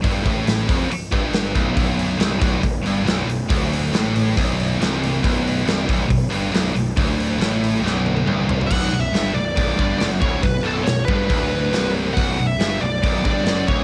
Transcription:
0.02 0.24 G1 medium
0.02 0.23 G2 loud
0.02 kick loud
0.02 open hi-hat medium
0.23 0.65 A1 loud
0.23 0.67 A2 loud
0.23 kick loud
0.23 open hi-hat medium
0.47 snare medium
0.47 open hi-hat medium
0.68 0.89 F1 medium
0.68 0.89 F2 medium
0.68 kick loud
0.68 open hi-hat medium
0.90 muted picked electric bass stroke soft
0.90 muted distorted electric guitar stroke medium
0.90 open hi-hat medium
1.12 1.52 G1 loud
1.12 1.54 G2 loud
1.12 kick loud
1.12 open hi-hat soft
1.33 snare loud
1.33 open hi-hat medium
1.54 1.75 B0 loud
1.54 1.74 B1 loud
1.54 kick loud
1.54 open hi-hat medium
1.75 2.17 B0 medium
1.75 2.18 B1 loud
1.75 kick loud
1.75 open hi-hat medium
1.99 open hi-hat medium
2.18 2.39 C1 medium
2.18 2.39 C2 loud
2.18 snare loud
2.18 open hi-hat medium
2.39 2.61 B0 medium
2.39 2.60 B1 medium
2.39 kick loud
2.39 open hi-hat medium
2.61 2.82 B0 medium
2.61 2.79 B1 medium
2.61 kick loud
2.61 open hi-hat medium
2.83 3.02 G1 loud
2.83 3.04 G2 loud
2.83 open hi-hat medium
3.03 3.25 B0 medium
3.03 3.26 B1 loud
3.07 snare loud
3.07 open hi-hat medium
3.25 3.47 B0 medium
3.25 3.45 B1 medium
3.29 open hi-hat medium
3.49 3.90 D1 medium
3.49 3.92 D2 loud
3.49 kick loud
3.49 open hi-hat medium
3.73 open hi-hat medium
3.92 4.32 A1 medium
3.92 4.35 A2 loud
3.92 snare loud
3.92 open hi-hat medium
4.16 open hi-hat medium
4.37 4.77 B0 loud
4.37 4.79 B1 loud
4.37 kick loud
4.37 open hi-hat medium
4.60 open hi-hat medium
4.80 5.20 C1 medium
4.80 5.22 C2 loud
4.80 snare loud
4.80 open hi-hat medium
5.03 open hi-hat medium
5.23 5.64 B0 medium
5.23 5.66 B1 loud
5.23 kick loud
5.23 open hi-hat medium
5.47 open hi-hat medium
5.65 5.86 C1 medium
5.65 5.87 C2 medium
5.65 snare loud
5.65 open hi-hat medium
5.88 6.08 B0 medium
5.88 6.07 B1 loud
5.88 kick loud
5.88 open hi-hat medium
6.09 6.29 B0 medium
6.09 6.26 B1 medium
6.09 kick medium
6.09 open hi-hat medium
6.30 6.50 G1 loud
6.30 6.52 G2 loud
6.30 open hi-hat medium
6.52 6.72 B0 medium
6.52 6.74 B1 loud
6.52 snare loud
6.52 open hi-hat medium
6.73 6.94 B0 medium
6.73 6.92 B1 medium
6.73 open hi-hat medium
6.96 7.37 D1 medium
6.96 7.39 D2 loud
6.96 kick loud
6.96 open hi-hat medium
7.20 open hi-hat medium
7.38 7.79 A1 medium
7.38 7.82 A2 loud
7.38 open hi-hat medium
7.42 snare loud
7.64 open hi-hat medium
7.81 8.22 B0 loud
7.81 8.25 B1 loud
7.86 snare medium
8.06 high tom medium
8.17 high tom medium
8.26 8.66 C1 medium
8.26 8.69 C2 loud
8.26 mid tom medium
8.49 floor tom loud
8.61 floor tom medium
8.67 8.90 B0 medium
8.67 8.91 B1 loud
8.67 8.98 F#5 medium
8.67 kick loud
8.71 crash loud
8.91 9.11 B0 medium
8.91 9.09 B1 medium
9.01 9.32 E5 medium
9.12 9.32 G1 medium
9.12 9.34 G2 medium
9.12 snare medium
9.12 open hi-hat soft
9.34 9.54 B0 medium
9.34 9.52 B1 medium
9.34 9.97 D5 medium
9.55 9.77 B0 loud
9.55 9.76 B1 loud
9.55 kick loud
9.55 open hi-hat medium
9.76 9.98 G1 medium
9.76 9.98 G2 medium
9.76 kick loud
9.98 10.19 F#1 loud
9.98 10.20 F#2 loud
9.98 10.04 D5 medium
9.98 snare loud
9.98 open hi-hat soft
10.21 10.41 D1 medium
10.21 10.42 D2 medium
10.21 10.42 C#5 medium
10.21 kick loud
10.43 10.62 B0 medium
10.43 10.60 B1 medium
10.43 10.65 B4 medium
10.43 kick loud
10.43 open hi-hat medium
10.63 10.84 B0 medium
10.63 10.85 B1 medium
10.63 10.84 A4 medium
10.83 11.06 B0 medium
10.83 11.03 B1 medium
10.83 11.05 C#5 medium
10.83 open hi-hat medium
10.87 snare loud
11.05 11.28 G1 medium
11.05 11.29 G2 loud
11.05 11.89 B4 medium
11.05 kick loud
11.29 11.70 D1 medium
11.29 11.72 D2 loud
11.29 kick loud
11.29 open hi-hat medium
11.72 12.13 C1 medium
11.72 12.15 C2 medium
11.72 snare loud
11.72 open hi-hat medium
12.14 12.36 B0 medium
12.14 12.38 B1 loud
12.14 12.47 F#5 medium
12.14 kick loud
12.14 open hi-hat medium
12.37 12.58 B0 medium
12.37 12.56 B1 medium
12.47 12.81 E5 medium
12.58 12.79 G1 medium
12.58 12.80 G2 medium
12.58 snare loud
12.58 open hi-hat soft
12.81 13.01 B0 medium
12.81 12.99 B1 medium
12.81 13.44 D5 medium
13.02 13.23 B0 medium
13.02 13.23 B1 loud
13.02 kick loud
13.02 open hi-hat medium
13.25 13.44 G1 loud
13.25 13.46 G2 medium
13.25 kick loud
13.44 13.65 F#1 medium
13.44 13.67 F#2 loud
13.44 13.67 D5 medium
13.44 snare medium
13.44 open hi-hat soft
13.68 13.84 D1 medium
13.68 13.84 D2 medium
13.68 13.84 C#5 medium
13.68 kick loud

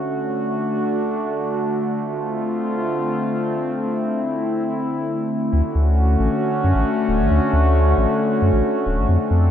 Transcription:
0.00 5.49 D3 medium
0.00 5.49 A3 medium
0.00 0.18 C#4 medium
0.00 1.94 F#4 medium
0.20 1.96 D4 medium
1.98 5.50 C4 medium
1.98 3.74 F4 medium
3.75 5.51 E4 medium
5.53 5.62 D2 loud
5.53 9.05 D3 medium
5.53 9.05 A3 medium
5.53 9.05 C#4 medium
5.53 9.05 F#4 medium
5.75 6.17 D2 medium
6.20 6.29 A1 medium
6.64 6.73 F#2 medium
6.75 6.84 A1 medium
7.09 7.21 D1 medium
7.20 7.29 A1 medium
7.31 7.40 D2 loud
7.53 7.94 D2 loud
7.98 8.07 A1 medium
8.42 8.51 F#2 medium
8.53 8.62 A1 medium
8.86 8.99 D1 medium
8.98 9.07 A1 medium
9.09 9.18 F2 loud
9.09 9.51 F3 medium
9.09 9.51 C4 medium
9.09 9.51 D4 medium
9.09 9.51 A4 loud
9.31 9.51 F2 loud

